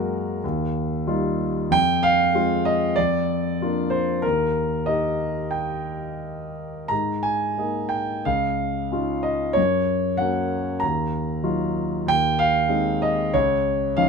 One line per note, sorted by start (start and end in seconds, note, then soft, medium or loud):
0.00 0.39 F#2 medium
0.00 0.41 G#3 soft
0.00 0.41 A#3 soft
0.00 0.42 F#4 medium
0.00 0.39 A#4 medium
0.44 1.66 D#2 medium
1.07 1.68 G3 soft
1.07 1.69 D#4 soft
1.07 1.69 F4 medium
1.70 2.93 F2 medium
1.70 2.01 G5 loud
2.03 2.62 F5 loud
2.34 2.95 G#3 soft
2.34 2.95 C4 soft
2.34 2.96 F4 medium
2.65 2.98 D#5 medium
2.96 4.21 F2 medium
2.96 3.87 D5 medium
3.61 4.22 A#3 soft
3.61 4.23 D4 soft
3.61 4.23 F4 medium
3.90 4.21 C5 medium
4.22 6.87 D#2 medium
4.22 4.82 A#4 medium
4.86 6.87 A#3 soft
4.86 6.87 D#4 soft
4.86 6.87 G4 soft
4.86 5.54 D#5 medium
5.51 6.51 G5 medium
6.88 8.22 G#2 medium
6.88 7.25 A#5 medium
7.23 7.93 G#5 medium
7.58 8.23 A#3 soft
7.58 8.24 D#4 soft
7.58 8.24 G#4 soft
7.89 8.22 G5 medium
8.25 9.53 C#2 medium
8.25 9.28 F5 medium
8.92 9.55 C#4 soft
8.92 9.55 D#4 soft
8.92 9.55 F4 soft
9.23 9.57 D#5 medium
9.53 10.79 F#2 medium
9.53 10.15 C#5 medium
10.17 10.81 A#3 soft
10.17 10.81 C#4 soft
10.17 10.81 F#4 soft
10.17 10.77 F#5 medium
10.80 12.03 D#2 medium
10.80 11.70 A#5 medium
11.43 12.04 F#3 soft
11.43 12.05 D#4 soft
11.43 12.05 F4 soft
12.06 13.30 D#2 medium
12.06 12.40 G5 loud
12.39 13.04 F5 loud
12.69 13.31 G#3 soft
12.69 13.31 C4 soft
12.69 13.31 D#4 medium
13.02 13.32 D#5 medium
13.34 14.09 C#2 medium
13.34 14.00 C#5 medium
13.97 14.09 F3 soft
13.97 14.09 C#4 soft
13.97 14.09 D#4 medium
13.97 14.09 F5 medium